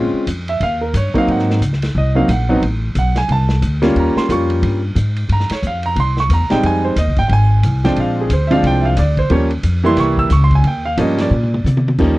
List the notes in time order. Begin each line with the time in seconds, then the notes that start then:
Already playing: A#2 G#3 C4 C#4 F4
0.13 muted upright bass stroke
0.27 F2, kick, hi-hat pedal, ride
0.48 E5, ride
0.60 D#2 F5, kick, ride
0.81 A#4
0.94 G2 C#5, kick, hi-hat pedal, ride
1.14 F#3 A#3 C4 D#4, muted upright bass stroke, kick, ride
1.18 F5
1.27 G#2, kick, ride
1.32 F#5
1.39 snare
1.50 snare
1.61 C#2, kick, hi-hat pedal, ride
1.73 snare
1.82 snare, ride
1.95 C2 D#5, kick
2.15 F#3 A#3 C4 D#4 F5
2.28 A#1 F#5, kick, hi-hat pedal, ride
2.49 F#3 B3 C4 D#4
2.62 A1, kick, ride
2.95 B1 F#5, kick, hi-hat pedal, ride
3.16 G#5, snare, ride
3.29 C2 A5, kick, ride
3.49 snare
3.62 D2, kick, hi-hat pedal, ride
3.82 G3 A#3 C#4 F4, snare, ride
3.95 D#2 A#5, kick, ride
4.16 C6, muted upright bass stroke, snare
4.29 F2 G3 A#3 C#4 F4 C#6, kick, hi-hat pedal, ride
4.50 ride
4.62 G2, kick, ride
4.95 G#2, kick, hi-hat pedal, ride
5.16 ride
5.29 G2 A#5, kick, ride
5.40 snare
5.50 C#5, muted upright bass stroke, snare, ride
5.62 F2, kick, hi-hat pedal
5.67 F5
5.83 A#5, ride
5.96 C2, kick, ride
6.00 C6
6.17 C#6, snare
6.29 E2, kick, hi-hat pedal, ride
6.34 A#5
6.40 C2
6.50 A#1 G3 G#3 C4 D#4 G5, snare, ride
6.63 F2 G#5, kick, ride
6.85 C5
6.96 D#2 D#5, kick, hi-hat pedal, ride
7.07 C2
7.16 G#1 G5, kick, ride
7.28 G#1 G5, kick, ride
7.33 G#5
7.63 C2, kick, hi-hat pedal, ride
7.84 F3 G#3 C4 D4 G5, snare, ride
7.96 A#1 F5, kick, ride
8.21 G#4
8.30 D2 C5, kick, hi-hat pedal, ride
8.47 F3 G#3 C4 E5, ride
8.52 D4 F5
8.63 C2 G5, kick, ride
8.82 E5 F5
8.97 D2 D5, kick, snare, hi-hat pedal, ride
9.17 C5, kick, ride
9.30 D#2 F3 G3 A#3 C#4 C#5, kick, ride
9.51 ride
9.63 F2, kick, hi-hat pedal, ride
9.83 E3 G3 A#3 E4 C6
9.97 C2 C#6, kick, snare, ride
10.17 E6, kick
10.30 C#2 C#6, kick, snare, hi-hat pedal, ride
10.44 C6
10.51 kick, ride
10.55 G#5
10.64 D#2 G5, kick, ride
10.85 F5
10.97 G2 F3 G3 A#3 C#4 D#5, kick, hi-hat pedal, ride
11.18 D5, snare, ride
11.31 A#2, mid tom
11.43 mid tom
11.54 mid tom
11.64 C3, hi-hat pedal, high tom
11.77 high tom
11.88 high tom
11.98 D#2 F3 G3 A#3 C#4 D#4, kick, crash